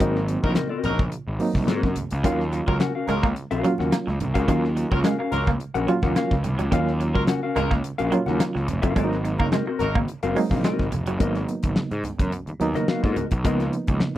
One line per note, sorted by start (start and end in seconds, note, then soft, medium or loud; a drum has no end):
0.00 0.36 G#1 loud
0.00 0.67 F#3 medium
0.00 0.68 A#3 medium
0.00 0.18 C4 medium
0.00 0.68 C4 medium
0.00 0.68 D#4 medium
0.00 0.18 F#4 medium
0.00 0.18 A#4 loud
0.00 0.19 D#5 medium
0.00 kick loud
0.00 closed hi-hat medium
0.00 muted conga soft
0.16 snare soft
0.28 closed hi-hat medium
0.28 muted conga soft
0.43 0.55 A#1 medium
0.43 0.52 F#3 medium
0.43 0.52 D#4 medium
0.43 0.52 A#4 medium
0.43 kick loud
0.43 high conga medium
0.55 0.70 C4 medium
0.55 0.70 F#4 medium
0.55 0.69 A#4 medium
0.55 0.68 D#5 medium
0.55 snare loud
0.55 closed hi-hat medium
0.55 high conga medium
0.69 0.91 C4 medium
0.69 0.91 F#4 medium
0.69 0.90 A#4 medium
0.69 0.90 D#5 medium
0.84 1.08 A#1 medium
0.84 1.03 F#3 medium
0.84 1.02 D#4 medium
0.84 1.02 A#4 loud
0.84 closed hi-hat medium
0.84 muted conga soft
0.84 low conga medium
0.98 kick loud
0.98 snare soft
0.98 high conga medium
1.12 closed hi-hat medium
1.28 1.38 G#1 medium
1.39 1.90 F#3 medium
1.39 1.90 A#3 medium
1.39 1.91 C4 medium
1.39 1.91 D#4 medium
1.39 open hi-hat medium
1.39 muted conga soft
1.53 1.66 C2 medium
1.53 kick medium
1.53 snare soft
1.53 high conga medium
1.67 1.81 G#2 medium
1.67 1.88 C4 medium
1.67 1.89 F#4 loud
1.67 1.89 A#4 medium
1.67 1.89 D#5 medium
1.67 snare loud
1.67 closed hi-hat medium
1.67 muted conga soft
1.83 1.94 F#2 medium
1.83 kick medium
1.83 snare soft
1.83 high conga medium
1.96 closed hi-hat medium
1.96 muted conga soft
1.96 high conga medium
1.96 low conga medium
2.11 2.25 C#2 loud
2.11 closed hi-hat medium
2.24 2.60 D#2 loud
2.24 2.34 D#3 medium
2.24 2.91 F#3 medium
2.24 2.91 A#3 medium
2.24 2.42 C#4 medium
2.24 2.92 C#4 medium
2.24 2.92 F4 loud
2.24 2.42 F#4 loud
2.24 2.42 A#4 loud
2.24 2.43 F5 loud
2.24 kick loud
2.24 closed hi-hat loud
2.24 muted conga soft
2.40 snare soft
2.52 muted clean electric guitar stroke soft
2.52 closed hi-hat medium
2.52 muted conga soft
2.67 2.79 C#2 medium
2.67 2.75 F#3 medium
2.67 2.76 F#3 medium
2.67 2.76 F4 medium
2.67 2.76 A#4 medium
2.67 kick loud
2.67 high conga medium
2.80 2.94 C#4 medium
2.80 2.95 F#4 medium
2.80 2.94 A#4 medium
2.80 2.95 F#5 medium
2.80 muted clean electric guitar stroke soft
2.80 snare loud
2.80 closed hi-hat medium
2.80 muted conga soft
2.80 high conga medium
2.95 3.12 C#4 medium
2.95 3.12 F#4 medium
2.95 3.12 A#4 medium
2.95 3.12 F5 medium
3.08 3.32 C#2 medium
3.08 3.26 F#3 loud
3.08 3.18 G#3 medium
3.08 3.26 F4 medium
3.08 3.26 A#4 loud
3.08 closed hi-hat medium
3.08 muted conga soft
3.08 low conga medium
3.23 3.32 A#3 medium
3.23 kick loud
3.23 snare soft
3.23 high conga medium
3.36 closed hi-hat medium
3.36 muted conga soft
3.51 3.62 A#1 medium
3.51 3.71 C#4 medium
3.51 3.71 F#4 medium
3.51 3.71 A#4 medium
3.51 3.70 F5 medium
3.51 closed hi-hat soft
3.63 4.14 F#3 medium
3.63 3.74 F#3 medium
3.63 4.14 A#3 medium
3.63 4.15 C#4 medium
3.63 4.15 F4 medium
3.63 closed hi-hat medium
3.63 muted conga soft
3.78 3.90 D#2 medium
3.78 3.92 C#4 soft
3.78 3.92 F#4 soft
3.78 3.92 A#4 medium
3.78 3.92 F#5 medium
3.78 snare soft
3.78 high conga medium
3.92 4.02 A#3 medium
3.92 snare loud
3.92 closed hi-hat medium
4.07 4.18 C#2 medium
4.07 muted clean electric guitar stroke soft
4.07 snare soft
4.07 high conga medium
4.20 4.33 C2 medium
4.20 closed hi-hat medium
4.20 high conga medium
4.20 low conga medium
4.34 4.48 C#2 loud
4.34 4.44 F#3 medium
4.34 4.47 C#4 medium
4.34 4.47 F#4 medium
4.34 4.48 A#4 medium
4.34 4.48 F5 medium
4.34 kick medium
4.34 closed hi-hat medium
4.48 4.84 D#2 loud
4.48 4.58 D#3 medium
4.48 5.15 F#3 medium
4.48 5.15 A#3 medium
4.48 4.66 C#4 medium
4.48 5.16 C#4 medium
4.48 5.16 F4 medium
4.48 4.66 F#4 medium
4.48 4.67 A#4 medium
4.48 4.67 F5 medium
4.48 kick loud
4.48 closed hi-hat medium
4.64 snare soft
4.76 muted clean electric guitar stroke soft
4.76 closed hi-hat medium
4.76 muted conga soft
4.90 5.02 C#2 medium
4.90 4.99 F#3 medium
4.90 5.00 F#3 medium
4.90 4.99 F4 medium
4.90 4.99 A#4 medium
4.90 kick loud
4.90 high conga medium
5.04 5.14 G#3 medium
5.04 5.18 C#4 medium
5.04 5.19 F#4 medium
5.04 5.18 A#4 medium
5.04 5.18 F5 medium
5.04 snare loud
5.04 closed hi-hat medium
5.04 muted conga soft
5.04 high conga medium
5.19 5.36 C#4 medium
5.19 5.36 F#4 medium
5.19 5.36 A#4 medium
5.19 5.36 F5 medium
5.19 muted clean electric guitar stroke soft
5.32 5.56 C#2 loud
5.32 5.50 F#3 loud
5.32 5.50 F4 loud
5.32 5.50 A#4 loud
5.32 closed hi-hat medium
5.32 muted conga soft
5.32 low conga medium
5.47 5.56 A#3 medium
5.47 kick loud
5.47 snare soft
5.47 high conga medium
5.60 closed hi-hat medium
5.74 5.86 A#1 medium
5.74 5.92 C#4 medium
5.74 5.92 F#4 medium
5.74 5.92 A#4 medium
5.74 5.91 F#5 medium
5.74 closed hi-hat medium
5.87 6.38 F#3 medium
5.87 5.98 F#3 medium
5.87 6.38 A#3 medium
5.87 6.39 C#4 medium
5.87 6.39 F4 loud
5.87 closed hi-hat medium
6.02 6.14 D#2 medium
6.02 6.15 C#4 medium
6.02 6.15 F#4 medium
6.02 6.15 A#4 medium
6.02 6.16 F#5 medium
6.02 kick medium
6.02 snare soft
6.02 high conga medium
6.16 6.26 A#3 medium
6.16 6.34 C#4 medium
6.16 6.34 F#4 medium
6.16 6.34 A#4 medium
6.16 6.34 F5 medium
6.16 snare loud
6.16 closed hi-hat medium
6.31 6.42 C#2 medium
6.31 kick loud
6.31 snare soft
6.31 high conga medium
6.44 6.57 C2 medium
6.44 muted clean electric guitar stroke soft
6.44 closed hi-hat medium
6.44 muted conga soft
6.44 high conga medium
6.44 low conga medium
6.59 6.70 C#2 medium
6.59 6.67 F#3 medium
6.59 closed hi-hat medium
6.71 7.16 D#2 loud
6.71 6.81 D#3 medium
6.71 7.39 F#3 medium
6.71 7.39 A#3 medium
6.71 6.90 C#4 loud
6.71 7.40 C#4 medium
6.71 7.40 F4 medium
6.71 6.90 F#4 medium
6.71 6.91 A#4 medium
6.71 6.91 F5 loud
6.71 kick loud
6.71 closed hi-hat medium
6.87 snare soft
7.00 muted clean electric guitar stroke soft
7.00 closed hi-hat medium
7.14 7.26 C#2 medium
7.14 7.23 F#3 medium
7.14 7.23 F4 medium
7.14 7.23 A#4 medium
7.14 kick loud
7.14 high conga medium
7.27 7.42 C#4 medium
7.27 7.43 F#4 medium
7.27 7.42 A#4 medium
7.27 7.43 F#5 medium
7.27 muted clean electric guitar stroke soft
7.27 snare loud
7.27 closed hi-hat medium
7.27 muted conga soft
7.27 high conga medium
7.43 7.60 C#4 medium
7.43 7.60 F#4 medium
7.43 7.60 A#4 medium
7.43 7.60 F5 medium
7.56 7.80 C#2 loud
7.56 7.74 F#3 loud
7.56 7.66 G#3 medium
7.56 7.74 F4 loud
7.56 7.74 A#4 loud
7.56 closed hi-hat medium
7.56 muted conga soft
7.56 low conga medium
7.71 7.79 A#3 medium
7.71 kick loud
7.71 snare soft
7.71 high conga medium
7.84 closed hi-hat medium
7.84 muted conga soft
7.98 8.11 A#1 medium
7.98 8.16 C#4 medium
7.98 8.16 F#4 medium
7.98 8.16 A#4 medium
7.98 8.15 F5 medium
7.98 closed hi-hat soft
8.11 8.62 F#3 medium
8.11 8.21 F#3 medium
8.11 8.62 A#3 medium
8.11 8.63 C#4 medium
8.11 8.63 F4 loud
8.11 closed hi-hat medium
8.11 muted conga soft
8.26 8.39 D#2 medium
8.26 8.40 C#4 medium
8.26 8.40 F#4 medium
8.26 8.40 A#4 medium
8.26 8.39 F#5 medium
8.26 snare soft
8.26 high conga medium
8.40 8.50 A#3 medium
8.40 snare loud
8.40 closed hi-hat loud
8.40 muted conga soft
8.55 8.66 C#2 medium
8.55 muted clean electric guitar stroke soft
8.55 snare soft
8.55 high conga medium
8.68 8.81 F1 loud
8.68 closed hi-hat medium
8.68 muted conga soft
8.68 high conga medium
8.68 low conga medium
8.82 8.94 F#1 loud
8.82 8.92 F#3 medium
8.82 8.95 C#4 medium
8.82 8.95 F#4 medium
8.82 8.95 A#4 medium
8.82 8.97 F5 medium
8.82 kick medium
8.82 closed hi-hat medium
8.96 9.40 G#1 loud
8.96 9.63 F#3 medium
8.96 9.06 G#3 medium
8.96 9.64 A#3 medium
8.96 9.16 C4 medium
8.96 9.64 C4 medium
8.96 9.04 C#4 medium
8.96 9.17 F#4 medium
8.96 9.17 A#4 medium
8.96 9.17 D#5 loud
8.96 kick loud
8.96 closed hi-hat medium
8.96 muted conga soft
9.04 9.67 D#4 medium
9.12 snare soft
9.24 muted clean electric guitar stroke soft
9.24 closed hi-hat medium
9.24 muted conga soft
9.38 9.50 F#1 medium
9.38 9.47 F#3 medium
9.38 9.48 A#3 medium
9.38 9.47 D#4 medium
9.38 9.47 A#4 medium
9.38 kick loud
9.38 high conga medium
9.52 9.62 G#3 medium
9.52 9.67 C4 medium
9.52 9.67 F#4 medium
9.52 9.66 A#4 medium
9.52 9.66 D#5 medium
9.52 snare loud
9.52 closed hi-hat medium
9.52 muted conga soft
9.52 high conga medium
9.67 9.85 C4 medium
9.67 9.84 F#4 medium
9.67 9.84 A#4 medium
9.67 9.84 D#5 medium
9.67 muted clean electric guitar stroke soft
9.79 10.04 G#1 medium
9.79 9.98 F#3 loud
9.79 9.97 D#4 medium
9.79 9.98 A#4 loud
9.79 closed hi-hat medium
9.79 muted conga soft
9.79 low conga medium
9.95 10.04 A#3 medium
9.95 kick loud
9.95 high conga medium
10.08 closed hi-hat medium
10.08 muted conga soft
10.23 10.34 F#1 medium
10.23 10.40 C4 medium
10.23 10.40 F#4 medium
10.23 10.40 A#4 medium
10.23 10.40 F5 medium
10.23 closed hi-hat medium
10.35 10.86 F#3 medium
10.35 10.46 G#3 medium
10.35 10.87 A#3 medium
10.35 10.87 C4 medium
10.35 10.87 D#4 medium
10.35 open hi-hat medium
10.35 muted conga soft
10.49 10.62 A#1 loud
10.49 10.63 C4 medium
10.49 10.63 F#4 medium
10.49 10.64 A#4 medium
10.49 10.64 F5 medium
10.49 kick medium
10.49 snare soft
10.49 high conga medium
10.64 10.74 G#3 medium
10.64 10.85 C4 medium
10.64 10.85 F#4 medium
10.64 10.85 A#4 medium
10.64 10.85 D#5 medium
10.64 snare loud
10.64 closed hi-hat medium
10.79 10.91 G#1 medium
10.79 kick medium
10.79 snare soft
10.79 high conga medium
10.92 11.07 F1 medium
10.92 muted clean electric guitar stroke soft
10.92 closed hi-hat medium
10.92 muted conga soft
10.92 high conga medium
10.92 low conga medium
11.06 11.18 F#1 medium
11.06 11.16 F#3 medium
11.06 closed hi-hat medium
11.19 11.44 G#1 loud
11.19 11.87 F#3 medium
11.19 11.88 A#3 medium
11.19 11.38 B3 medium
11.19 11.88 B3 medium
11.19 11.88 D#4 medium
11.19 11.39 F#4 medium
11.19 11.39 A#4 medium
11.19 11.39 D#5 medium
11.19 kick loud
11.19 closed hi-hat medium
11.35 snare soft
11.35 closed hi-hat soft
11.48 closed hi-hat medium
11.48 muted conga soft
11.63 11.75 G#1 medium
11.63 kick loud
11.63 closed hi-hat medium
11.63 high conga medium
11.76 muted picked electric bass stroke soft
11.76 snare loud
11.76 muted conga soft
11.76 high conga medium
11.91 12.02 G#2 loud
11.91 closed hi-hat soft
12.04 closed hi-hat medium
12.04 muted conga soft
12.04 low conga medium
12.19 12.31 F#2 medium
12.19 kick loud
12.19 snare soft
12.19 closed hi-hat medium
12.19 high conga medium
12.19 low conga medium
12.32 closed hi-hat medium
12.47 muted picked electric bass stroke soft
12.47 closed hi-hat soft
12.60 12.73 D#2 medium
12.60 13.11 F#3 medium
12.60 13.11 A#3 medium
12.60 13.11 B3 medium
12.60 13.12 D#4 medium
12.60 closed hi-hat medium
12.60 muted conga soft
12.74 12.87 B3 medium
12.74 12.88 F#4 medium
12.74 12.88 A#4 medium
12.74 12.90 D#5 medium
12.74 snare soft
12.74 closed hi-hat soft
12.74 high conga medium
12.88 13.03 B3 medium
12.88 13.04 F#4 medium
12.88 13.03 A#4 medium
12.88 13.03 F5 medium
12.88 snare loud
13.04 13.15 G#2 loud
13.04 13.24 B3 medium
13.04 13.24 F#4 medium
13.04 13.24 A#4 medium
13.04 13.23 D#5 medium
13.04 kick loud
13.04 snare soft
13.16 closed hi-hat medium
13.16 high conga medium
13.16 low conga medium
13.31 13.45 B1 medium
13.31 kick medium
13.31 closed hi-hat medium
13.44 13.68 C#2 loud
13.44 14.12 F3 medium
13.44 14.12 A#3 medium
13.44 13.63 B3 medium
13.44 14.13 B3 medium
13.44 14.13 D#4 medium
13.44 13.63 F4 medium
13.44 13.63 A#4 medium
13.44 13.64 D#5 medium
13.44 kick loud
13.44 closed hi-hat medium
13.44 muted conga soft
13.60 snare soft
13.60 closed hi-hat soft
13.72 closed hi-hat medium
13.72 muted conga soft
13.87 13.99 C#2 medium
13.87 kick loud
13.87 closed hi-hat medium
13.87 high conga medium
14.00 muted picked electric bass stroke soft
14.00 snare loud
14.00 muted conga soft
14.00 high conga medium